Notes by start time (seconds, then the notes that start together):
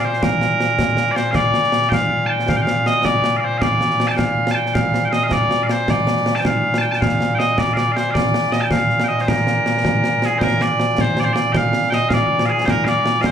Already playing: A#2
0.04 C5
0.13 C5, snare
0.23 A#4, concert bass drum, snare
0.41 snare
0.61 snare
0.79 concert bass drum, snare
0.97 snare
1.11 D5
1.16 C5, snare
1.31 D5 F5, concert bass drum, snare
1.54 snare
1.64 snare
1.72 snare
1.82 snare
1.89 F5 G5, concert bass drum, snare
2.26 G5 A5
2.40 snare
2.49 F5, concert bass drum, snare
2.56 G5
2.61 F5
2.67 snare
2.86 D#5, snare
3.05 D5, concert bass drum, snare
3.24 snare
3.37 D5 F5
3.44 C5
3.58 D5 F5, concert bass drum, snare
3.81 snare
3.91 snare
4.00 snare
4.08 G5 A5, snare
4.17 F5, concert bass drum, snare
4.47 snare
4.51 G5 A5
4.66 snare
4.74 F5, concert bass drum, snare
4.94 snare
5.05 G5
5.09 D#5 F5, snare
5.24 D#5 F5
5.31 D5, concert bass drum, snare
5.51 snare
5.63 D5 F5
5.69 C5, snare
5.88 D5, concert bass drum, snare
6.07 snare
6.17 snare
6.26 snare
6.35 A5, snare
6.40 G5
6.45 F5, concert bass drum, snare
6.74 A5, snare
6.81 G5
6.91 A5, snare
6.95 G5
7.01 F5, concert bass drum, snare
7.21 snare
7.35 D#5 G5
7.40 snare
7.58 D5, concert bass drum, snare
7.74 D5 F5, snare
7.92 C5 F5
7.97 snare
8.11 D5 F5
8.15 concert bass drum, snare
8.34 snare
8.43 snare
8.52 D#5, snare
8.61 G5 A5, snare
8.71 F5, concert bass drum, snare
8.90 snare
9.00 snare
9.04 G5
9.08 D#5
9.19 C5, snare
9.28 A#4, concert bass drum, snare
9.47 snare
9.66 snare
9.85 concert bass drum, snare
10.04 snare
10.22 G#4, snare
10.38 A#4 C5, concert bass drum, snare
10.61 D5, snare
10.80 snare
10.98 C5, concert bass drum, snare
11.17 D5, snare
11.24 C5
11.33 D5, snare
11.53 F5 G5, concert bass drum, snare
11.73 snare
11.83 snare
11.90 D#5 G5, snare
12.09 F5, concert bass drum, snare
12.13 D5
12.39 snare
12.46 G#4 F5
12.58 snare
12.66 C5, concert bass drum, snare
12.70 A#4
12.85 D5 F5, snare
13.06 snare
13.21 F5, concert bass drum, snare
13.26 C5